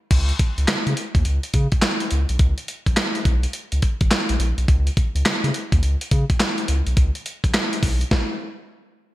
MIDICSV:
0, 0, Header, 1, 3, 480
1, 0, Start_track
1, 0, Tempo, 571429
1, 93, Time_signature, 4, 2, 24, 8
1, 7683, End_track
2, 0, Start_track
2, 0, Title_t, "Analog synth bass"
2, 0, Program_c, 0, 38
2, 92, Note_on_c, 0, 37, 103
2, 269, Note_off_c, 0, 37, 0
2, 488, Note_on_c, 0, 37, 84
2, 551, Note_off_c, 0, 37, 0
2, 576, Note_on_c, 0, 49, 48
2, 637, Note_off_c, 0, 49, 0
2, 728, Note_on_c, 0, 49, 99
2, 791, Note_off_c, 0, 49, 0
2, 965, Note_on_c, 0, 39, 83
2, 1029, Note_off_c, 0, 39, 0
2, 1056, Note_on_c, 0, 37, 91
2, 1168, Note_off_c, 0, 37, 0
2, 1295, Note_on_c, 0, 49, 113
2, 1407, Note_off_c, 0, 49, 0
2, 1781, Note_on_c, 0, 37, 90
2, 1891, Note_off_c, 0, 37, 0
2, 1930, Note_on_c, 0, 35, 75
2, 1992, Note_off_c, 0, 35, 0
2, 2013, Note_on_c, 0, 37, 97
2, 2126, Note_off_c, 0, 37, 0
2, 2408, Note_on_c, 0, 34, 93
2, 2471, Note_off_c, 0, 34, 0
2, 2733, Note_on_c, 0, 35, 104
2, 2909, Note_off_c, 0, 35, 0
2, 3131, Note_on_c, 0, 37, 88
2, 3193, Note_off_c, 0, 37, 0
2, 3368, Note_on_c, 0, 32, 94
2, 3431, Note_off_c, 0, 32, 0
2, 3611, Note_on_c, 0, 34, 92
2, 3673, Note_off_c, 0, 34, 0
2, 3694, Note_on_c, 0, 34, 102
2, 3807, Note_off_c, 0, 34, 0
2, 3848, Note_on_c, 0, 35, 83
2, 3911, Note_off_c, 0, 35, 0
2, 3936, Note_on_c, 0, 37, 110
2, 4111, Note_off_c, 0, 37, 0
2, 4328, Note_on_c, 0, 37, 93
2, 4391, Note_off_c, 0, 37, 0
2, 4417, Note_on_c, 0, 49, 47
2, 4478, Note_off_c, 0, 49, 0
2, 4570, Note_on_c, 0, 49, 100
2, 4632, Note_off_c, 0, 49, 0
2, 4809, Note_on_c, 0, 39, 103
2, 4871, Note_off_c, 0, 39, 0
2, 4894, Note_on_c, 0, 37, 97
2, 5007, Note_off_c, 0, 37, 0
2, 5138, Note_on_c, 0, 49, 99
2, 5249, Note_off_c, 0, 49, 0
2, 5619, Note_on_c, 0, 37, 88
2, 5729, Note_off_c, 0, 37, 0
2, 5770, Note_on_c, 0, 35, 83
2, 5832, Note_off_c, 0, 35, 0
2, 5856, Note_on_c, 0, 37, 108
2, 5968, Note_off_c, 0, 37, 0
2, 6251, Note_on_c, 0, 34, 89
2, 6313, Note_off_c, 0, 34, 0
2, 6577, Note_on_c, 0, 35, 90
2, 6752, Note_off_c, 0, 35, 0
2, 7683, End_track
3, 0, Start_track
3, 0, Title_t, "Drums"
3, 90, Note_on_c, 9, 42, 65
3, 91, Note_on_c, 9, 36, 105
3, 91, Note_on_c, 9, 49, 84
3, 174, Note_off_c, 9, 42, 0
3, 175, Note_off_c, 9, 36, 0
3, 175, Note_off_c, 9, 49, 0
3, 242, Note_on_c, 9, 42, 50
3, 326, Note_off_c, 9, 42, 0
3, 331, Note_on_c, 9, 36, 94
3, 331, Note_on_c, 9, 42, 71
3, 415, Note_off_c, 9, 36, 0
3, 415, Note_off_c, 9, 42, 0
3, 487, Note_on_c, 9, 42, 51
3, 570, Note_on_c, 9, 39, 97
3, 571, Note_off_c, 9, 42, 0
3, 571, Note_on_c, 9, 42, 61
3, 572, Note_on_c, 9, 38, 121
3, 654, Note_off_c, 9, 39, 0
3, 655, Note_off_c, 9, 42, 0
3, 656, Note_off_c, 9, 38, 0
3, 729, Note_on_c, 9, 42, 53
3, 813, Note_off_c, 9, 42, 0
3, 814, Note_on_c, 9, 42, 67
3, 898, Note_off_c, 9, 42, 0
3, 964, Note_on_c, 9, 36, 102
3, 965, Note_on_c, 9, 42, 49
3, 1048, Note_off_c, 9, 36, 0
3, 1049, Note_off_c, 9, 42, 0
3, 1050, Note_on_c, 9, 42, 70
3, 1134, Note_off_c, 9, 42, 0
3, 1204, Note_on_c, 9, 42, 58
3, 1288, Note_off_c, 9, 42, 0
3, 1290, Note_on_c, 9, 42, 69
3, 1292, Note_on_c, 9, 36, 89
3, 1374, Note_off_c, 9, 42, 0
3, 1376, Note_off_c, 9, 36, 0
3, 1442, Note_on_c, 9, 42, 50
3, 1446, Note_on_c, 9, 36, 90
3, 1526, Note_off_c, 9, 42, 0
3, 1526, Note_on_c, 9, 42, 70
3, 1529, Note_on_c, 9, 39, 91
3, 1530, Note_off_c, 9, 36, 0
3, 1530, Note_on_c, 9, 38, 113
3, 1610, Note_off_c, 9, 42, 0
3, 1613, Note_off_c, 9, 39, 0
3, 1614, Note_off_c, 9, 38, 0
3, 1683, Note_on_c, 9, 42, 50
3, 1767, Note_off_c, 9, 42, 0
3, 1769, Note_on_c, 9, 42, 75
3, 1853, Note_off_c, 9, 42, 0
3, 1924, Note_on_c, 9, 42, 50
3, 2008, Note_off_c, 9, 42, 0
3, 2010, Note_on_c, 9, 42, 69
3, 2011, Note_on_c, 9, 36, 111
3, 2094, Note_off_c, 9, 42, 0
3, 2095, Note_off_c, 9, 36, 0
3, 2165, Note_on_c, 9, 42, 52
3, 2249, Note_off_c, 9, 42, 0
3, 2253, Note_on_c, 9, 42, 76
3, 2337, Note_off_c, 9, 42, 0
3, 2406, Note_on_c, 9, 36, 76
3, 2408, Note_on_c, 9, 42, 50
3, 2490, Note_off_c, 9, 36, 0
3, 2492, Note_off_c, 9, 42, 0
3, 2492, Note_on_c, 9, 39, 92
3, 2493, Note_on_c, 9, 42, 66
3, 2494, Note_on_c, 9, 38, 118
3, 2576, Note_off_c, 9, 39, 0
3, 2577, Note_off_c, 9, 42, 0
3, 2578, Note_off_c, 9, 38, 0
3, 2647, Note_on_c, 9, 42, 50
3, 2731, Note_off_c, 9, 42, 0
3, 2733, Note_on_c, 9, 36, 92
3, 2733, Note_on_c, 9, 42, 71
3, 2817, Note_off_c, 9, 36, 0
3, 2817, Note_off_c, 9, 42, 0
3, 2884, Note_on_c, 9, 42, 52
3, 2968, Note_off_c, 9, 42, 0
3, 2968, Note_on_c, 9, 42, 78
3, 3052, Note_off_c, 9, 42, 0
3, 3124, Note_on_c, 9, 42, 61
3, 3208, Note_off_c, 9, 42, 0
3, 3212, Note_on_c, 9, 42, 72
3, 3214, Note_on_c, 9, 36, 82
3, 3296, Note_off_c, 9, 42, 0
3, 3298, Note_off_c, 9, 36, 0
3, 3366, Note_on_c, 9, 42, 48
3, 3368, Note_on_c, 9, 36, 89
3, 3450, Note_off_c, 9, 42, 0
3, 3451, Note_on_c, 9, 42, 68
3, 3452, Note_off_c, 9, 36, 0
3, 3453, Note_on_c, 9, 39, 87
3, 3454, Note_on_c, 9, 38, 119
3, 3535, Note_off_c, 9, 42, 0
3, 3537, Note_off_c, 9, 39, 0
3, 3538, Note_off_c, 9, 38, 0
3, 3605, Note_on_c, 9, 42, 54
3, 3689, Note_off_c, 9, 42, 0
3, 3695, Note_on_c, 9, 42, 72
3, 3779, Note_off_c, 9, 42, 0
3, 3847, Note_on_c, 9, 42, 49
3, 3931, Note_off_c, 9, 42, 0
3, 3934, Note_on_c, 9, 36, 116
3, 3934, Note_on_c, 9, 42, 67
3, 4018, Note_off_c, 9, 36, 0
3, 4018, Note_off_c, 9, 42, 0
3, 4089, Note_on_c, 9, 42, 48
3, 4173, Note_off_c, 9, 42, 0
3, 4175, Note_on_c, 9, 36, 100
3, 4176, Note_on_c, 9, 42, 73
3, 4259, Note_off_c, 9, 36, 0
3, 4260, Note_off_c, 9, 42, 0
3, 4331, Note_on_c, 9, 42, 51
3, 4415, Note_off_c, 9, 42, 0
3, 4415, Note_on_c, 9, 39, 97
3, 4416, Note_on_c, 9, 38, 116
3, 4416, Note_on_c, 9, 42, 63
3, 4499, Note_off_c, 9, 39, 0
3, 4500, Note_off_c, 9, 38, 0
3, 4500, Note_off_c, 9, 42, 0
3, 4571, Note_on_c, 9, 42, 50
3, 4655, Note_off_c, 9, 42, 0
3, 4656, Note_on_c, 9, 42, 71
3, 4740, Note_off_c, 9, 42, 0
3, 4807, Note_on_c, 9, 36, 103
3, 4807, Note_on_c, 9, 42, 58
3, 4891, Note_off_c, 9, 36, 0
3, 4891, Note_off_c, 9, 42, 0
3, 4896, Note_on_c, 9, 42, 77
3, 4980, Note_off_c, 9, 42, 0
3, 5050, Note_on_c, 9, 42, 60
3, 5134, Note_off_c, 9, 42, 0
3, 5135, Note_on_c, 9, 42, 73
3, 5136, Note_on_c, 9, 36, 88
3, 5219, Note_off_c, 9, 42, 0
3, 5220, Note_off_c, 9, 36, 0
3, 5289, Note_on_c, 9, 42, 48
3, 5290, Note_on_c, 9, 36, 92
3, 5373, Note_off_c, 9, 42, 0
3, 5374, Note_off_c, 9, 36, 0
3, 5374, Note_on_c, 9, 42, 68
3, 5376, Note_on_c, 9, 39, 92
3, 5377, Note_on_c, 9, 38, 119
3, 5458, Note_off_c, 9, 42, 0
3, 5460, Note_off_c, 9, 39, 0
3, 5461, Note_off_c, 9, 38, 0
3, 5527, Note_on_c, 9, 42, 51
3, 5611, Note_off_c, 9, 42, 0
3, 5613, Note_on_c, 9, 42, 75
3, 5697, Note_off_c, 9, 42, 0
3, 5767, Note_on_c, 9, 42, 49
3, 5851, Note_off_c, 9, 42, 0
3, 5853, Note_on_c, 9, 42, 66
3, 5854, Note_on_c, 9, 36, 107
3, 5937, Note_off_c, 9, 42, 0
3, 5938, Note_off_c, 9, 36, 0
3, 6007, Note_on_c, 9, 42, 50
3, 6091, Note_off_c, 9, 42, 0
3, 6097, Note_on_c, 9, 42, 81
3, 6181, Note_off_c, 9, 42, 0
3, 6248, Note_on_c, 9, 36, 83
3, 6252, Note_on_c, 9, 42, 49
3, 6332, Note_off_c, 9, 36, 0
3, 6334, Note_on_c, 9, 39, 90
3, 6335, Note_off_c, 9, 42, 0
3, 6335, Note_on_c, 9, 42, 66
3, 6336, Note_on_c, 9, 38, 123
3, 6418, Note_off_c, 9, 39, 0
3, 6419, Note_off_c, 9, 42, 0
3, 6420, Note_off_c, 9, 38, 0
3, 6492, Note_on_c, 9, 42, 54
3, 6575, Note_on_c, 9, 36, 92
3, 6576, Note_off_c, 9, 42, 0
3, 6576, Note_on_c, 9, 46, 75
3, 6659, Note_off_c, 9, 36, 0
3, 6660, Note_off_c, 9, 46, 0
3, 6730, Note_on_c, 9, 42, 54
3, 6814, Note_off_c, 9, 42, 0
3, 6815, Note_on_c, 9, 36, 108
3, 6816, Note_on_c, 9, 38, 96
3, 6899, Note_off_c, 9, 36, 0
3, 6900, Note_off_c, 9, 38, 0
3, 7683, End_track
0, 0, End_of_file